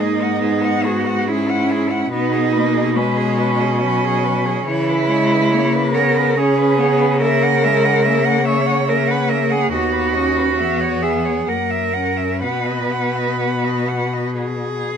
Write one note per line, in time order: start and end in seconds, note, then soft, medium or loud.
0.00 2.11 G#2 medium
0.00 0.43 A#3 medium
0.00 0.86 D#4 medium
0.00 0.24 G#4 soft
0.22 0.42 F#5 soft
0.41 1.29 B3 medium
0.41 0.65 G#4 soft
0.64 0.87 F#5 soft
0.85 1.29 F#4 medium
0.85 1.08 G#4 soft
1.06 1.28 F#5 soft
1.27 2.11 C#4 medium
1.27 2.12 E4 medium
1.27 1.51 G#4 soft
1.50 1.73 F#5 soft
1.71 1.92 G#4 soft
1.91 2.11 F#5 soft
2.12 4.62 B2 medium
2.12 2.53 B3 medium
2.12 2.97 D#4 medium
2.12 2.34 B4 soft
2.32 2.54 G#4 soft
2.53 2.97 A#3 medium
2.53 2.75 B4 soft
2.74 2.94 G#4 soft
2.95 3.83 G#3 medium
2.95 4.69 C#4 medium
2.95 3.18 B4 soft
3.17 3.40 G#4 soft
3.39 3.62 B4 soft
3.61 3.81 G#4 soft
3.81 4.65 F#3 medium
3.81 4.05 B4 soft
4.04 4.25 G#4 soft
4.24 4.47 B4 soft
4.45 4.66 G#4 soft
4.66 9.69 C#3 medium
4.66 5.08 E3 medium
4.66 5.93 E4 medium
4.66 4.91 C#5 soft
4.89 5.12 B4 soft
5.09 5.53 G#3 medium
5.09 5.33 C#5 soft
5.32 5.52 B4 soft
5.52 5.96 A#3 medium
5.52 5.75 C#5 medium
5.73 5.96 B4 medium
5.93 6.37 B3 medium
5.93 6.38 A#4 medium
5.93 6.17 C#5 soft
6.15 6.36 B4 soft
6.35 6.80 C#4 medium
6.35 7.21 G#4 medium
6.35 6.60 C#5 soft
6.58 6.82 B4 soft
6.78 7.22 B3 medium
6.78 7.02 C#5 soft
7.01 7.21 B4 soft
7.21 7.65 A#3 medium
7.21 8.45 A#4 medium
7.21 7.44 E5 medium
7.43 7.65 F#5 soft
7.64 8.07 G#3 medium
7.64 7.86 E5 soft
7.85 8.04 F#5 soft
8.05 8.89 A#3 medium
8.05 8.26 E5 soft
8.25 8.47 F#5 soft
8.45 8.90 C#5 medium
8.45 8.68 E5 soft
8.66 8.87 F#5 soft
8.87 9.75 A#3 medium
8.87 9.12 A#4 medium
8.87 9.09 E5 soft
9.07 9.31 B4 medium
9.07 9.30 F#5 soft
9.29 9.53 A#4 medium
9.29 9.52 E5 soft
9.50 9.72 G#4 medium
9.50 9.71 F#5 soft
9.71 10.61 D#2 medium
9.71 10.18 B3 medium
9.71 11.04 F#4 medium
9.71 9.94 D#5 soft
9.92 10.15 B4 soft
10.13 10.62 C#4 medium
10.13 10.38 D#5 soft
10.37 10.58 B4 soft
10.58 11.48 E2 soft
10.58 11.50 B3 medium
10.58 10.82 E5 soft
10.80 11.04 C#5 soft
11.02 11.50 G#4 medium
11.02 11.27 E5 soft
11.25 11.47 C#5 soft
11.47 12.45 F#2 soft
11.47 11.95 A#3 soft
11.47 12.43 A#4 medium
11.47 11.72 F#5 soft
11.70 11.95 E5 soft
11.94 12.45 C#4 soft
11.94 12.18 F#5 soft
12.17 12.42 E5 soft
12.42 14.97 B2 soft
12.42 14.86 B3 soft
12.42 14.34 B4 medium
12.42 12.68 F#5 soft
12.66 12.93 D#5 soft
12.91 13.17 F#5 soft
13.16 13.40 D#5 soft
13.40 13.66 F#5 soft
13.64 13.90 D#5 soft
13.89 14.15 F#5 soft
14.13 14.37 D#5 soft
14.37 14.97 G#4 medium